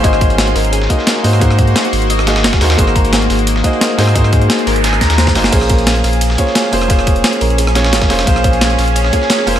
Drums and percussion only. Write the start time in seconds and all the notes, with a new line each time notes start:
0.04 kick, closed hi-hat
0.13 cross-stick, closed hi-hat
0.21 kick, closed hi-hat
0.30 closed hi-hat
0.38 snare, closed hi-hat
0.47 closed hi-hat
0.56 snare, closed hi-hat, open hi-hat
0.65 closed hi-hat
0.73 closed hi-hat
0.82 snare
0.90 kick, closed hi-hat
0.99 snare
1.07 snare, closed hi-hat
1.16 snare
1.24 closed hi-hat, open hi-hat
1.33 cross-stick, closed hi-hat
1.41 kick, closed hi-hat
1.50 cross-stick, closed hi-hat
1.59 kick, closed hi-hat
1.68 closed hi-hat
1.76 snare, closed hi-hat
1.85 closed hi-hat
1.93 closed hi-hat, open hi-hat
2.02 closed hi-hat
2.10 closed hi-hat
2.19 cross-stick
2.27 snare, closed hi-hat
2.36 snare, closed hi-hat
2.44 snare, closed hi-hat
2.53 kick, snare, closed hi-hat
2.61 snare, closed hi-hat, open hi-hat
2.70 cross-stick, snare, closed hi-hat
2.78 kick, closed hi-hat
2.87 cross-stick, closed hi-hat
2.96 kick, closed hi-hat
3.04 closed hi-hat
3.13 snare, closed hi-hat
3.22 closed hi-hat
3.30 snare, closed hi-hat, open hi-hat
3.39 closed hi-hat
3.47 closed hi-hat
3.56 snare
3.64 kick, closed hi-hat
3.73 closed hi-hat
3.81 snare, closed hi-hat
3.90 closed hi-hat
3.99 snare, closed hi-hat, open hi-hat
4.08 cross-stick
4.15 kick, closed hi-hat
4.24 cross-stick, closed hi-hat
4.33 kick, closed hi-hat
4.42 closed hi-hat
4.50 snare, closed hi-hat
4.59 closed hi-hat
4.67 snare, closed hi-hat, open hi-hat
4.76 closed hi-hat
4.84 snare, closed hi-hat
4.93 cross-stick
5.01 kick, snare, closed hi-hat
5.10 snare, closed hi-hat
5.18 snare, closed hi-hat
5.27 kick, snare, closed hi-hat
5.35 snare, closed hi-hat, open hi-hat
5.44 snare
5.52 kick, closed hi-hat, crash, ride
5.61 cross-stick, closed hi-hat
5.70 kick, closed hi-hat, ride
5.79 closed hi-hat
5.87 snare, closed hi-hat, ride
5.96 closed hi-hat
6.04 snare, closed hi-hat, open hi-hat, ride
6.13 closed hi-hat
6.21 closed hi-hat, ride
6.30 snare
6.38 kick, closed hi-hat, ride
6.47 snare
6.55 snare, closed hi-hat, ride
6.64 snare
6.73 closed hi-hat, open hi-hat, ride
6.81 cross-stick, closed hi-hat
6.90 kick, closed hi-hat, ride
6.99 cross-stick, closed hi-hat
7.07 kick, closed hi-hat, ride
7.16 closed hi-hat
7.24 snare, closed hi-hat, ride
7.33 closed hi-hat
7.41 closed hi-hat, open hi-hat, ride
7.50 closed hi-hat
7.58 closed hi-hat, ride
7.67 cross-stick
7.75 snare, closed hi-hat, ride
7.84 snare, closed hi-hat
7.93 snare, closed hi-hat, ride
8.02 kick, snare, closed hi-hat
8.10 snare, closed hi-hat, open hi-hat, ride
8.19 cross-stick, snare, closed hi-hat
8.27 kick, closed hi-hat, ride
8.36 cross-stick, closed hi-hat
8.44 kick, closed hi-hat, ride
8.53 closed hi-hat
8.61 snare, closed hi-hat, ride
8.70 closed hi-hat
8.79 snare, closed hi-hat, open hi-hat, ride
8.88 closed hi-hat
8.96 closed hi-hat, ride
9.04 snare
9.13 kick, closed hi-hat, ride
9.22 snare
9.30 snare, closed hi-hat, ride
9.39 snare
9.47 closed hi-hat, open hi-hat, ride
9.56 cross-stick, closed hi-hat